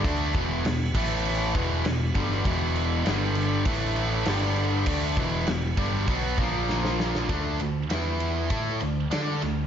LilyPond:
<<
  \new Staff \with { instrumentName = "Analog synth pad" } { \time 4/4 \key d \lydian \tempo 4 = 99 <e b fis'>4. <a e' b'>4 <e b fis'>4.~ | <e b fis'>4 <g d' a'>4 <a e' b'>4 <g d' a'>4 | <e b fis'>2~ <e b fis'>8 <ais eis' c''>4. | r1 | }
  \new Staff \with { instrumentName = "Distorted electric guitar" } { \clef bass \time 4/4 \key d \lydian <d a d'>8 <e, b, e>8 <e, b,>8 <a, e a>4 <e, b, e>8 <e, b,>8 <g, d g>8 | <e, b, e>4 <g, d g>4 <a, e a>4 <g, d g>4 | <d a d'>8 <e, b, e>8 <e, b,>8 <g, d g>8 <b, fis b>8 <ais, eis ais>4. | <d a d'>8 <d a>8 <e b e'>4 <a e' a'>8 <d a>8 <d' a' d''>8 <d a>8 | }
  \new Staff \with { instrumentName = "Overdriven electric guitar" } { \clef bass \time 4/4 \key d \lydian <d a d'>8 <e, b, e>8 <e, b,>8 <a, e a>4 <e, b, e>8 <e, b,>8 <g, d g>8 | <e, b, e>4 <g, d g>4 <a, e a>4 <g, d g>4 | <d a d'>8 <e, b, e>8 <e, b,>8 <g, d g>8 <b, fis b>8 <ais, eis ais>4. | <d a d'>8 <d a>8 <e b e'>4 <a e' a'>8 <d a>8 <d' a' d''>8 <d a>8 | }
  \new Staff \with { instrumentName = "Picked electric bass" } { \clef bass \time 4/4 \key d \lydian d,8 e,,8 e,,8 a,,4 e,,8 e,,8 g,,8 | e,,4 g,,4 a,,4 g,,4 | d,8 e,,8 e,,8 g,,8 b,,8 ais,,4. | d,8 d,8 e,4 a,8 d,8 d8 d,8 | }
  \new DrumStaff \with { instrumentName = "Drums" } \drummode { \time 4/4 <cymc bd>8 <cymc bd>8 <cymc sn>8 <cymc bd>8 cymc8 <cymc bd>8 <cymc sn>8 <cymc bd>16 sn16 | <cymc bd>8 cymc8 <cymc sn>8 cymc8 <cymc bd>8 cymc8 <cymc sn>8 cymc8 | <cymc bd>8 <cymc bd>8 <cymc sn>8 <cymc bd>8 <cymc bd>8 <cymc bd>8 sn16 sn16 sn16 sn16 | <bd cymr>8 cymr8 <cymr sn>8 cymr8 <bd cymr>8 cymr8 <cymr sn>8 <cymr sn>8 | }
>>